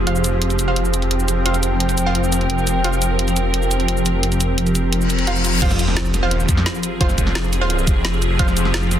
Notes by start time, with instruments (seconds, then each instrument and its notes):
Already playing: synth drone F3 C4 G4, ambient pad F4 C5
0.07 detuned saw bass F1, synth stab F4 C5 F5, synth drone A#4, closed hi-hat
0.16 shaker
0.24 closed hi-hat, shaker
0.39 ambient pad G5, closed hi-hat
0.50 closed hi-hat, shaker
0.59 closed hi-hat, shaker
0.68 synth stab F4 C5 F5
0.76 closed hi-hat
0.85 shaker
0.94 closed hi-hat, shaker
1.02 closed hi-hat
1.11 closed hi-hat
1.20 shaker
1.28 closed hi-hat, shaker
1.46 synth stab F4 C5 F5, closed hi-hat
1.54 closed hi-hat, shaker
1.63 closed hi-hat, shaker
1.80 closed hi-hat
1.89 closed hi-hat, shaker
1.98 closed hi-hat, shaker
2.06 synth stab F4 C5 F5
2.15 closed hi-hat
2.24 shaker
2.32 closed hi-hat, shaker
2.41 closed hi-hat
2.50 closed hi-hat
2.58 shaker
2.67 closed hi-hat, shaker
2.84 synth stab F4 C5 F5, closed hi-hat
2.93 shaker
3.02 closed hi-hat, shaker
3.19 closed hi-hat
3.28 closed hi-hat, shaker
3.36 closed hi-hat, shaker
3.54 closed hi-hat
3.62 shaker
3.71 closed hi-hat, shaker
3.80 closed hi-hat
3.88 closed hi-hat
3.97 shaker
4.06 closed hi-hat, shaker
4.23 closed hi-hat
4.32 closed hi-hat, shaker
4.40 closed hi-hat, shaker
4.58 closed hi-hat
4.67 closed hi-hat, shaker
4.75 closed hi-hat, shaker
4.93 closed hi-hat, reverse cymbal
5.01 shaker
5.10 closed hi-hat, shaker
5.19 closed hi-hat
5.27 synth stab F4 C5 F5, closed hi-hat
5.36 shaker
5.45 closed hi-hat, shaker
5.62 detuned saw bass F1, synth drone F3 C4 G4 G#4, synth stab F4 C5 F5, ambient pad F4, kick, closed hi-hat, crash, sub drop
5.71 snare, shaker
5.79 closed hi-hat, shaker
5.88 snare
5.97 snare, closed hi-hat
6.05 ambient pad C5, shaker
6.14 snare, closed hi-hat, shaker
6.22 detuned saw bass E1, synth stab F4 C5 F5
6.31 closed hi-hat
6.40 shaker
6.49 detuned saw bass F2, kick, closed hi-hat, shaker
6.57 snare
6.66 snare, closed hi-hat
6.75 shaker
6.83 closed hi-hat, shaker
7.01 detuned saw bass F1, synth stab F4 C5 F5, kick, closed hi-hat
7.09 snare, shaker
7.18 kick, closed hi-hat, shaker
7.27 snare
7.35 snare, closed hi-hat
7.44 shaker
7.53 open hi-hat, shaker
7.61 synth stab F4 C5 F5
7.70 closed hi-hat
7.79 shaker
7.87 detuned saw bass F1, kick, closed hi-hat, shaker
8.05 detuned saw bass F1, snare, closed hi-hat
8.13 shaker
8.22 closed hi-hat, shaker
8.39 detuned saw bass F1, synth stab F4 C5 F5, synth drone C5, kick, closed hi-hat
8.48 snare, shaker
8.55 ambient pad G5, closed hi-hat, shaker
8.65 snare
8.74 snare, closed hi-hat
8.83 shaker
8.91 snare, closed hi-hat, shaker